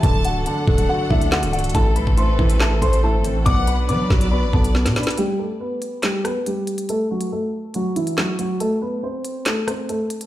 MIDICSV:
0, 0, Header, 1, 7, 480
1, 0, Start_track
1, 0, Tempo, 428571
1, 37, Time_signature, 4, 2, 24, 8
1, 11495, End_track
2, 0, Start_track
2, 0, Title_t, "Violin section"
2, 0, Program_c, 0, 48
2, 38, Note_on_c, 0, 81, 116
2, 488, Note_off_c, 0, 81, 0
2, 515, Note_on_c, 0, 78, 96
2, 1911, Note_off_c, 0, 78, 0
2, 2438, Note_on_c, 0, 71, 87
2, 3114, Note_off_c, 0, 71, 0
2, 3158, Note_on_c, 0, 72, 78
2, 3385, Note_off_c, 0, 72, 0
2, 3877, Note_on_c, 0, 78, 111
2, 4328, Note_off_c, 0, 78, 0
2, 4357, Note_on_c, 0, 74, 96
2, 5752, Note_off_c, 0, 74, 0
2, 11495, End_track
3, 0, Start_track
3, 0, Title_t, "Grand piano"
3, 0, Program_c, 1, 0
3, 40, Note_on_c, 1, 81, 106
3, 49, Note_on_c, 1, 69, 84
3, 232, Note_off_c, 1, 81, 0
3, 238, Note_off_c, 1, 69, 0
3, 280, Note_on_c, 1, 78, 80
3, 289, Note_on_c, 1, 66, 59
3, 472, Note_off_c, 1, 78, 0
3, 477, Note_off_c, 1, 66, 0
3, 519, Note_on_c, 1, 81, 79
3, 528, Note_on_c, 1, 69, 58
3, 969, Note_off_c, 1, 81, 0
3, 974, Note_off_c, 1, 69, 0
3, 999, Note_on_c, 1, 78, 89
3, 1008, Note_on_c, 1, 66, 71
3, 1192, Note_off_c, 1, 78, 0
3, 1197, Note_off_c, 1, 66, 0
3, 1235, Note_on_c, 1, 76, 82
3, 1244, Note_on_c, 1, 64, 69
3, 1429, Note_off_c, 1, 76, 0
3, 1434, Note_off_c, 1, 64, 0
3, 1479, Note_on_c, 1, 78, 83
3, 1488, Note_on_c, 1, 66, 62
3, 1672, Note_off_c, 1, 78, 0
3, 1677, Note_off_c, 1, 66, 0
3, 1711, Note_on_c, 1, 78, 89
3, 1720, Note_on_c, 1, 66, 65
3, 1907, Note_off_c, 1, 78, 0
3, 1912, Note_off_c, 1, 66, 0
3, 1955, Note_on_c, 1, 81, 115
3, 1964, Note_on_c, 1, 69, 89
3, 2149, Note_off_c, 1, 81, 0
3, 2154, Note_off_c, 1, 69, 0
3, 2195, Note_on_c, 1, 83, 84
3, 2204, Note_on_c, 1, 71, 61
3, 2390, Note_off_c, 1, 83, 0
3, 2395, Note_off_c, 1, 71, 0
3, 2435, Note_on_c, 1, 84, 85
3, 2444, Note_on_c, 1, 72, 64
3, 2887, Note_off_c, 1, 84, 0
3, 2892, Note_off_c, 1, 72, 0
3, 2919, Note_on_c, 1, 81, 87
3, 2928, Note_on_c, 1, 69, 69
3, 3112, Note_off_c, 1, 81, 0
3, 3117, Note_off_c, 1, 69, 0
3, 3154, Note_on_c, 1, 84, 80
3, 3163, Note_on_c, 1, 72, 65
3, 3349, Note_off_c, 1, 84, 0
3, 3354, Note_off_c, 1, 72, 0
3, 3400, Note_on_c, 1, 81, 90
3, 3409, Note_on_c, 1, 69, 68
3, 3850, Note_off_c, 1, 81, 0
3, 3855, Note_off_c, 1, 69, 0
3, 3872, Note_on_c, 1, 86, 124
3, 3881, Note_on_c, 1, 74, 91
3, 4067, Note_off_c, 1, 86, 0
3, 4073, Note_off_c, 1, 74, 0
3, 4118, Note_on_c, 1, 83, 85
3, 4127, Note_on_c, 1, 71, 67
3, 4311, Note_off_c, 1, 83, 0
3, 4317, Note_off_c, 1, 71, 0
3, 4355, Note_on_c, 1, 86, 83
3, 4364, Note_on_c, 1, 74, 59
3, 4807, Note_off_c, 1, 86, 0
3, 4812, Note_off_c, 1, 74, 0
3, 4833, Note_on_c, 1, 83, 92
3, 4842, Note_on_c, 1, 71, 69
3, 5028, Note_off_c, 1, 83, 0
3, 5034, Note_off_c, 1, 71, 0
3, 5072, Note_on_c, 1, 81, 78
3, 5081, Note_on_c, 1, 69, 57
3, 5525, Note_off_c, 1, 81, 0
3, 5530, Note_off_c, 1, 69, 0
3, 5558, Note_on_c, 1, 83, 72
3, 5567, Note_on_c, 1, 71, 59
3, 5751, Note_off_c, 1, 83, 0
3, 5756, Note_off_c, 1, 71, 0
3, 5801, Note_on_c, 1, 67, 112
3, 5810, Note_on_c, 1, 55, 88
3, 5993, Note_off_c, 1, 67, 0
3, 5998, Note_off_c, 1, 55, 0
3, 6036, Note_on_c, 1, 69, 77
3, 6045, Note_on_c, 1, 57, 59
3, 6230, Note_off_c, 1, 69, 0
3, 6235, Note_off_c, 1, 57, 0
3, 6275, Note_on_c, 1, 71, 78
3, 6284, Note_on_c, 1, 59, 68
3, 6727, Note_off_c, 1, 71, 0
3, 6732, Note_off_c, 1, 59, 0
3, 6760, Note_on_c, 1, 67, 84
3, 6769, Note_on_c, 1, 55, 68
3, 6952, Note_off_c, 1, 67, 0
3, 6957, Note_off_c, 1, 55, 0
3, 6997, Note_on_c, 1, 71, 88
3, 7005, Note_on_c, 1, 59, 65
3, 7191, Note_off_c, 1, 71, 0
3, 7195, Note_off_c, 1, 59, 0
3, 7242, Note_on_c, 1, 67, 69
3, 7250, Note_on_c, 1, 55, 55
3, 7691, Note_off_c, 1, 67, 0
3, 7695, Note_off_c, 1, 55, 0
3, 7721, Note_on_c, 1, 69, 102
3, 7729, Note_on_c, 1, 57, 83
3, 7913, Note_off_c, 1, 69, 0
3, 7918, Note_off_c, 1, 57, 0
3, 7960, Note_on_c, 1, 66, 79
3, 7969, Note_on_c, 1, 54, 55
3, 8152, Note_off_c, 1, 66, 0
3, 8158, Note_off_c, 1, 54, 0
3, 8200, Note_on_c, 1, 69, 78
3, 8209, Note_on_c, 1, 57, 58
3, 8650, Note_off_c, 1, 69, 0
3, 8655, Note_off_c, 1, 57, 0
3, 8680, Note_on_c, 1, 66, 87
3, 8689, Note_on_c, 1, 54, 69
3, 8872, Note_off_c, 1, 66, 0
3, 8878, Note_off_c, 1, 54, 0
3, 8916, Note_on_c, 1, 64, 81
3, 8925, Note_on_c, 1, 52, 65
3, 9110, Note_off_c, 1, 64, 0
3, 9115, Note_off_c, 1, 52, 0
3, 9161, Note_on_c, 1, 66, 80
3, 9170, Note_on_c, 1, 54, 62
3, 9353, Note_off_c, 1, 66, 0
3, 9359, Note_off_c, 1, 54, 0
3, 9393, Note_on_c, 1, 66, 85
3, 9401, Note_on_c, 1, 54, 64
3, 9588, Note_off_c, 1, 66, 0
3, 9593, Note_off_c, 1, 54, 0
3, 9635, Note_on_c, 1, 69, 110
3, 9644, Note_on_c, 1, 57, 88
3, 9830, Note_off_c, 1, 69, 0
3, 9835, Note_off_c, 1, 57, 0
3, 9874, Note_on_c, 1, 71, 82
3, 9883, Note_on_c, 1, 59, 57
3, 10069, Note_off_c, 1, 71, 0
3, 10074, Note_off_c, 1, 59, 0
3, 10115, Note_on_c, 1, 72, 82
3, 10124, Note_on_c, 1, 60, 61
3, 10567, Note_off_c, 1, 72, 0
3, 10572, Note_off_c, 1, 60, 0
3, 10598, Note_on_c, 1, 69, 87
3, 10607, Note_on_c, 1, 57, 67
3, 10791, Note_off_c, 1, 69, 0
3, 10796, Note_off_c, 1, 57, 0
3, 10833, Note_on_c, 1, 72, 78
3, 10842, Note_on_c, 1, 60, 63
3, 11028, Note_off_c, 1, 72, 0
3, 11034, Note_off_c, 1, 60, 0
3, 11079, Note_on_c, 1, 69, 88
3, 11088, Note_on_c, 1, 57, 63
3, 11495, Note_off_c, 1, 57, 0
3, 11495, Note_off_c, 1, 69, 0
3, 11495, End_track
4, 0, Start_track
4, 0, Title_t, "String section"
4, 0, Program_c, 2, 48
4, 37, Note_on_c, 2, 54, 83
4, 37, Note_on_c, 2, 62, 77
4, 37, Note_on_c, 2, 69, 96
4, 38, Note_on_c, 2, 57, 76
4, 1938, Note_off_c, 2, 54, 0
4, 1938, Note_off_c, 2, 62, 0
4, 1956, Note_on_c, 2, 52, 83
4, 1957, Note_on_c, 2, 60, 81
4, 3839, Note_off_c, 2, 57, 0
4, 3839, Note_off_c, 2, 69, 0
4, 3857, Note_off_c, 2, 52, 0
4, 3858, Note_off_c, 2, 60, 0
4, 3877, Note_on_c, 2, 54, 84
4, 3877, Note_on_c, 2, 59, 78
4, 3877, Note_on_c, 2, 71, 94
4, 3878, Note_on_c, 2, 62, 77
4, 5778, Note_off_c, 2, 54, 0
4, 5778, Note_off_c, 2, 59, 0
4, 5778, Note_off_c, 2, 62, 0
4, 5778, Note_off_c, 2, 71, 0
4, 11495, End_track
5, 0, Start_track
5, 0, Title_t, "Felt piano"
5, 0, Program_c, 3, 0
5, 0, Control_c, 3, 64, 127
5, 36, Note_on_c, 3, 50, 89
5, 53, Control_c, 3, 64, 0
5, 264, Control_c, 3, 64, 127
5, 501, Note_off_c, 3, 50, 0
5, 518, Note_on_c, 3, 50, 80
5, 760, Note_on_c, 3, 57, 91
5, 976, Note_off_c, 3, 50, 0
5, 993, Note_on_c, 3, 50, 78
5, 1239, Note_on_c, 3, 62, 81
5, 1458, Note_off_c, 3, 50, 0
5, 1475, Note_on_c, 3, 50, 91
5, 1714, Note_on_c, 3, 74, 85
5, 1952, Note_on_c, 3, 45, 93
5, 1955, Note_off_c, 3, 74, 0
5, 1956, Note_off_c, 3, 50, 0
5, 1958, Note_off_c, 3, 57, 0
5, 1958, Note_off_c, 3, 62, 0
5, 1969, Control_c, 3, 64, 0
5, 2196, Control_c, 3, 64, 127
5, 2416, Note_off_c, 3, 45, 0
5, 2433, Note_on_c, 3, 45, 80
5, 2675, Note_on_c, 3, 52, 96
5, 2901, Note_off_c, 3, 45, 0
5, 2918, Note_on_c, 3, 45, 79
5, 3158, Note_on_c, 3, 57, 78
5, 3385, Note_off_c, 3, 45, 0
5, 3402, Note_on_c, 3, 45, 95
5, 3635, Note_on_c, 3, 60, 88
5, 3875, Note_on_c, 3, 47, 96
5, 3876, Note_off_c, 3, 52, 0
5, 3876, Note_off_c, 3, 60, 0
5, 3877, Note_off_c, 3, 57, 0
5, 3879, Note_off_c, 3, 45, 0
5, 3891, Control_c, 3, 64, 0
5, 4113, Control_c, 3, 64, 127
5, 4343, Note_off_c, 3, 47, 0
5, 4360, Note_on_c, 3, 47, 78
5, 4599, Note_on_c, 3, 54, 99
5, 4824, Note_off_c, 3, 47, 0
5, 4841, Note_on_c, 3, 47, 71
5, 5079, Note_on_c, 3, 59, 85
5, 5300, Note_off_c, 3, 47, 0
5, 5317, Note_on_c, 3, 47, 88
5, 5555, Note_on_c, 3, 62, 83
5, 5796, Note_off_c, 3, 62, 0
5, 5797, Note_off_c, 3, 47, 0
5, 5798, Note_off_c, 3, 54, 0
5, 5798, Note_off_c, 3, 59, 0
5, 5809, Control_c, 3, 64, 0
5, 11495, End_track
6, 0, Start_track
6, 0, Title_t, "808-style bass"
6, 0, Program_c, 4, 38
6, 37, Note_on_c, 4, 26, 106
6, 397, Note_on_c, 4, 24, 97
6, 414, Note_off_c, 4, 26, 0
6, 511, Note_off_c, 4, 24, 0
6, 756, Note_on_c, 4, 26, 104
6, 987, Note_off_c, 4, 26, 0
6, 1237, Note_on_c, 4, 38, 108
6, 1597, Note_on_c, 4, 24, 101
6, 1614, Note_off_c, 4, 38, 0
6, 1939, Note_off_c, 4, 24, 0
6, 1957, Note_on_c, 4, 33, 112
6, 2197, Note_on_c, 4, 36, 100
6, 2214, Note_off_c, 4, 33, 0
6, 2311, Note_off_c, 4, 36, 0
6, 2318, Note_on_c, 4, 33, 98
6, 2663, Note_off_c, 4, 33, 0
6, 2677, Note_on_c, 4, 33, 100
6, 3138, Note_off_c, 4, 33, 0
6, 3158, Note_on_c, 4, 33, 109
6, 3517, Note_on_c, 4, 31, 96
6, 3534, Note_off_c, 4, 33, 0
6, 3697, Note_on_c, 4, 33, 103
6, 3713, Note_off_c, 4, 31, 0
6, 3868, Note_off_c, 4, 33, 0
6, 3877, Note_on_c, 4, 35, 105
6, 4356, Note_on_c, 4, 54, 102
6, 4373, Note_off_c, 4, 35, 0
6, 4585, Note_off_c, 4, 54, 0
6, 4597, Note_on_c, 4, 35, 104
6, 4957, Note_on_c, 4, 33, 97
6, 4974, Note_off_c, 4, 35, 0
6, 5071, Note_off_c, 4, 33, 0
6, 5077, Note_on_c, 4, 35, 107
6, 5437, Note_on_c, 4, 47, 96
6, 5454, Note_off_c, 4, 35, 0
6, 5551, Note_off_c, 4, 47, 0
6, 11495, End_track
7, 0, Start_track
7, 0, Title_t, "Drums"
7, 37, Note_on_c, 9, 36, 111
7, 37, Note_on_c, 9, 42, 81
7, 149, Note_off_c, 9, 36, 0
7, 149, Note_off_c, 9, 42, 0
7, 274, Note_on_c, 9, 42, 74
7, 386, Note_off_c, 9, 42, 0
7, 515, Note_on_c, 9, 42, 78
7, 627, Note_off_c, 9, 42, 0
7, 756, Note_on_c, 9, 36, 101
7, 868, Note_off_c, 9, 36, 0
7, 874, Note_on_c, 9, 42, 79
7, 986, Note_off_c, 9, 42, 0
7, 1237, Note_on_c, 9, 36, 84
7, 1349, Note_off_c, 9, 36, 0
7, 1361, Note_on_c, 9, 42, 80
7, 1473, Note_off_c, 9, 42, 0
7, 1478, Note_on_c, 9, 38, 109
7, 1483, Note_on_c, 9, 39, 89
7, 1590, Note_off_c, 9, 38, 0
7, 1595, Note_off_c, 9, 39, 0
7, 1600, Note_on_c, 9, 42, 88
7, 1712, Note_off_c, 9, 42, 0
7, 1717, Note_on_c, 9, 42, 67
7, 1777, Note_off_c, 9, 42, 0
7, 1777, Note_on_c, 9, 42, 71
7, 1837, Note_off_c, 9, 42, 0
7, 1837, Note_on_c, 9, 42, 69
7, 1898, Note_off_c, 9, 42, 0
7, 1898, Note_on_c, 9, 42, 67
7, 1956, Note_off_c, 9, 42, 0
7, 1956, Note_on_c, 9, 42, 84
7, 1957, Note_on_c, 9, 36, 107
7, 2068, Note_off_c, 9, 42, 0
7, 2069, Note_off_c, 9, 36, 0
7, 2194, Note_on_c, 9, 42, 74
7, 2306, Note_off_c, 9, 42, 0
7, 2318, Note_on_c, 9, 36, 99
7, 2430, Note_off_c, 9, 36, 0
7, 2436, Note_on_c, 9, 42, 79
7, 2548, Note_off_c, 9, 42, 0
7, 2677, Note_on_c, 9, 36, 102
7, 2789, Note_off_c, 9, 36, 0
7, 2795, Note_on_c, 9, 42, 80
7, 2907, Note_off_c, 9, 42, 0
7, 2917, Note_on_c, 9, 38, 125
7, 2922, Note_on_c, 9, 39, 99
7, 3029, Note_off_c, 9, 38, 0
7, 3034, Note_off_c, 9, 39, 0
7, 3158, Note_on_c, 9, 36, 82
7, 3161, Note_on_c, 9, 42, 86
7, 3270, Note_off_c, 9, 36, 0
7, 3273, Note_off_c, 9, 42, 0
7, 3281, Note_on_c, 9, 42, 73
7, 3393, Note_off_c, 9, 42, 0
7, 3634, Note_on_c, 9, 42, 91
7, 3746, Note_off_c, 9, 42, 0
7, 3876, Note_on_c, 9, 42, 79
7, 3877, Note_on_c, 9, 36, 108
7, 3988, Note_off_c, 9, 42, 0
7, 3989, Note_off_c, 9, 36, 0
7, 4114, Note_on_c, 9, 42, 76
7, 4226, Note_off_c, 9, 42, 0
7, 4355, Note_on_c, 9, 42, 79
7, 4467, Note_off_c, 9, 42, 0
7, 4596, Note_on_c, 9, 36, 103
7, 4597, Note_on_c, 9, 38, 66
7, 4708, Note_off_c, 9, 36, 0
7, 4709, Note_off_c, 9, 38, 0
7, 4715, Note_on_c, 9, 42, 76
7, 4827, Note_off_c, 9, 42, 0
7, 5077, Note_on_c, 9, 36, 84
7, 5189, Note_off_c, 9, 36, 0
7, 5201, Note_on_c, 9, 42, 79
7, 5313, Note_off_c, 9, 42, 0
7, 5318, Note_on_c, 9, 38, 61
7, 5430, Note_off_c, 9, 38, 0
7, 5438, Note_on_c, 9, 38, 67
7, 5442, Note_on_c, 9, 42, 83
7, 5550, Note_off_c, 9, 38, 0
7, 5554, Note_off_c, 9, 42, 0
7, 5558, Note_on_c, 9, 38, 98
7, 5558, Note_on_c, 9, 42, 50
7, 5637, Note_off_c, 9, 42, 0
7, 5637, Note_on_c, 9, 42, 67
7, 5670, Note_off_c, 9, 38, 0
7, 5677, Note_on_c, 9, 38, 99
7, 5718, Note_off_c, 9, 42, 0
7, 5718, Note_on_c, 9, 42, 85
7, 5789, Note_off_c, 9, 38, 0
7, 5796, Note_off_c, 9, 42, 0
7, 5796, Note_on_c, 9, 42, 83
7, 5908, Note_off_c, 9, 42, 0
7, 6515, Note_on_c, 9, 42, 76
7, 6627, Note_off_c, 9, 42, 0
7, 6750, Note_on_c, 9, 42, 73
7, 6756, Note_on_c, 9, 38, 121
7, 6761, Note_on_c, 9, 39, 93
7, 6862, Note_off_c, 9, 42, 0
7, 6868, Note_off_c, 9, 38, 0
7, 6873, Note_off_c, 9, 39, 0
7, 6997, Note_on_c, 9, 37, 97
7, 7000, Note_on_c, 9, 42, 83
7, 7109, Note_off_c, 9, 37, 0
7, 7112, Note_off_c, 9, 42, 0
7, 7240, Note_on_c, 9, 42, 78
7, 7352, Note_off_c, 9, 42, 0
7, 7474, Note_on_c, 9, 42, 90
7, 7586, Note_off_c, 9, 42, 0
7, 7593, Note_on_c, 9, 42, 72
7, 7705, Note_off_c, 9, 42, 0
7, 7716, Note_on_c, 9, 42, 79
7, 7828, Note_off_c, 9, 42, 0
7, 8071, Note_on_c, 9, 42, 72
7, 8183, Note_off_c, 9, 42, 0
7, 8670, Note_on_c, 9, 42, 75
7, 8782, Note_off_c, 9, 42, 0
7, 8918, Note_on_c, 9, 42, 68
7, 9030, Note_off_c, 9, 42, 0
7, 9038, Note_on_c, 9, 42, 65
7, 9150, Note_off_c, 9, 42, 0
7, 9159, Note_on_c, 9, 38, 113
7, 9164, Note_on_c, 9, 39, 85
7, 9271, Note_off_c, 9, 38, 0
7, 9276, Note_off_c, 9, 39, 0
7, 9395, Note_on_c, 9, 42, 85
7, 9507, Note_off_c, 9, 42, 0
7, 9636, Note_on_c, 9, 42, 80
7, 9748, Note_off_c, 9, 42, 0
7, 10355, Note_on_c, 9, 42, 74
7, 10467, Note_off_c, 9, 42, 0
7, 10590, Note_on_c, 9, 42, 74
7, 10596, Note_on_c, 9, 38, 120
7, 10601, Note_on_c, 9, 39, 98
7, 10702, Note_off_c, 9, 42, 0
7, 10708, Note_off_c, 9, 38, 0
7, 10713, Note_off_c, 9, 39, 0
7, 10836, Note_on_c, 9, 37, 98
7, 10840, Note_on_c, 9, 42, 85
7, 10948, Note_off_c, 9, 37, 0
7, 10952, Note_off_c, 9, 42, 0
7, 11079, Note_on_c, 9, 42, 77
7, 11191, Note_off_c, 9, 42, 0
7, 11314, Note_on_c, 9, 42, 90
7, 11426, Note_off_c, 9, 42, 0
7, 11434, Note_on_c, 9, 42, 72
7, 11495, Note_off_c, 9, 42, 0
7, 11495, End_track
0, 0, End_of_file